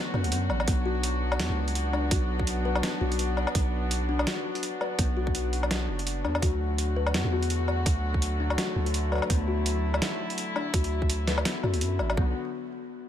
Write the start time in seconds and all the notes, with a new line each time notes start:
Already playing: D3 F#3 A3 B3 F#4
0.14 F#2 B3, low woodblock
0.24 D2, closed hi-hat
0.31 F#2 B3, closed hi-hat
0.49 A1, low woodblock
0.60 low woodblock
0.68 B1 B3 D4, kick, closed hi-hat
0.86 F#4
1.03 closed hi-hat
1.32 low woodblock
1.39 E2, snare, closed hi-hat
1.50 C#2
1.68 closed hi-hat
1.75 closed hi-hat
1.93 D4, low woodblock
2.11 B1 F#4, kick, closed hi-hat
2.39 kick
2.47 closed hi-hat
2.65 B4
2.75 low woodblock
2.83 B3, snare, closed hi-hat
3.01 B1 F#4
3.12 closed hi-hat
3.19 closed hi-hat
3.37 low woodblock
3.47 low woodblock
3.55 B1, kick, closed hi-hat
3.91 closed hi-hat
4.09 D4
4.19 low woodblock
4.27 F#4, snare, closed hi-hat
4.55 closed hi-hat
4.63 closed hi-hat
4.81 B4, low woodblock
4.99 B1 B3, kick, closed hi-hat
5.17 F#4
5.27 kick
5.35 closed hi-hat
5.53 closed hi-hat
5.63 low woodblock
5.71 snare, closed hi-hat
5.88 F#1
5.99 closed hi-hat
6.07 closed hi-hat
6.24 E2 D4, low woodblock
6.35 low woodblock
6.42 D2 D3 F#3 A3 F#4, kick, closed hi-hat
6.78 closed hi-hat
6.96 B4
7.07 low woodblock
7.14 F#2 B3, snare, closed hi-hat
7.25 E2
7.33 F#4
7.43 closed hi-hat
7.50 closed hi-hat
7.68 low woodblock
7.86 D2, kick, closed hi-hat
8.14 kick
8.22 closed hi-hat
8.40 D4
8.50 low woodblock
8.58 F#4, snare, closed hi-hat
8.76 D2
8.86 closed hi-hat
8.94 closed hi-hat
9.12 B4, low woodblock
9.15 low woodblock
9.18 low woodblock
9.22 low woodblock
9.30 D2 B3 E4, kick, closed hi-hat
9.48 F#4
9.66 closed hi-hat
9.94 low woodblock
10.02 snare, closed hi-hat
10.30 closed hi-hat
10.38 closed hi-hat
10.56 D4, low woodblock
10.74 D2 F#4, kick, closed hi-hat
10.84 closed hi-hat
11.02 kick
11.10 closed hi-hat
11.28 B4, snare, closed hi-hat
11.38 low woodblock
11.45 B3, snare, closed hi-hat
11.63 F#2 F#4, low woodblock
11.74 D2, closed hi-hat
11.81 F#2, closed hi-hat
11.99 A1, low woodblock
12.10 low woodblock
12.17 B1 D3 F#3 B3 F#4, kick